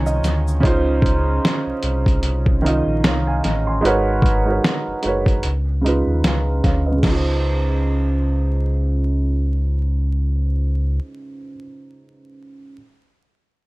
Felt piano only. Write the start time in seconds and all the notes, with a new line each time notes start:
Already playing: D#3 C#4 D#4 F4 C#5 G#5
0.06 D#5
0.60 C#3 C#4 D#4
0.65 F4 C5
2.62 D#3 C#4 D#4
2.66 F4 D#5
3.05 C#5 F5
3.27 F5 G#5
3.44 A#5
3.67 G#5 C6
3.81 G#3 D#4 F#4 A#4
3.86 B4 C#5
4.45 G#3 D#4 F#4 A#4
4.50 B4 C#5
5.02 G#3 D#4 F#4 A#4
5.07 B4 C#5
5.81 C#3 G#3 D#4
5.86 F4 B4
6.26 F5 G#5
6.63 C#5 F5
6.86 B4 D#5
6.92 C#3
6.97 G#3
7.04 D#4
7.10 F4
7.16 C5